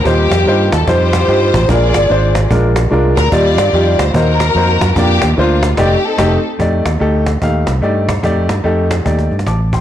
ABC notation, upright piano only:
X:1
M:4/4
L:1/8
Q:"Swing" 1/4=147
K:Fmix
V:1 name="Upright piano"
[G,EFc] z [G,EFc] z [G,EFc] z [G,EFG] z | [_A,DFB] z [A,DFc] z [A,DFB] z [A,DFB] z | [G,EFd] z [G,EFG] z [B,E_Gc] z [B,EGc] z | [B,DFd] z [B,DFc] z [A,EGd] z [A,EGe] z |
[A,EGd] z [A,EGA] z [A,EGf] z [A,EGd] z | [A,EGd] z [A,EGA] z [A,EGd] z [ad'] [gc'] |]
V:2 name="Upright piano" clef=bass
E,3 z4 z | B,,3 z4 z | E,3 z E,3 z | z8 |
z8 | z8 |]